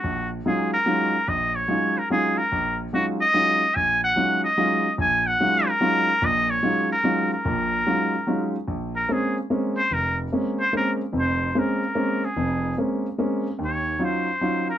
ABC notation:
X:1
M:3/4
L:1/8
Q:"Swing" 1/4=146
K:Ebm
V:1 name="Muted trumpet"
G z A B3 | e d2 B A B- | B z G e3 | a g2 e3 |
a g2 B3 | e d2 B2 B- | B4- B z | [K:Bbm] z B A z2 c |
B z2 c B z | c2 B3 A- | A2 z4 | d2 c3 B |]
V:2 name="Grand piano"
B,,,2 [G,A,DEF] z [G,A,DEF] z | B,,,2 [G,A,DEF] z [G,A,DEF] z | B,,,2 [G,A,DEF] z [G,A,DEF] z | B,,,2 [G,A,DEF] z [G,A,DEF] z |
B,,,2 [G,A,DEF] z [G,A,DEF] z | [B,,,B,,]2 [G,A,DEF] z [G,A,DEF] z | [B,,,B,,]2 [G,A,DEF] z [G,A,DEF] z | [K:Bbm] B,,,2 [A,B,CD] z [A,B,CD] z |
F,,,2 [A,B,CD] z [A,B,CD] z | [F,,,F,,]2 [A,B,CD] z [A,B,CD] z | [F,,,F,,]2 [A,B,CD] z [A,B,CD] z | [E,,E,]2 [G,DEF] z [G,DEF] z |]